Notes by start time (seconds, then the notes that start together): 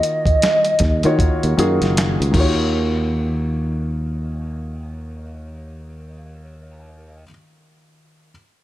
Already playing: D#3 A#3 F4 F#4 C#5 D#5
0.03 closed hi-hat
0.26 kick, closed hi-hat
0.42 snare, closed hi-hat
0.65 closed hi-hat
0.79 D#2, kick, snare, closed hi-hat
1.03 D#3 A#3 F4 F#4 C#5, closed hi-hat
1.19 kick, closed hi-hat
1.43 D#2, closed hi-hat
1.57 F#2 D#3 A#3 F4 F#4 G#4, closed hi-hat
1.82 F#1, snare, closed hi-hat
1.97 snare, closed hi-hat
2.20 C#2, closed hi-hat
2.31 D#2 D#3 A#3, kick, crash
2.36 F4 F#4
2.40 C#5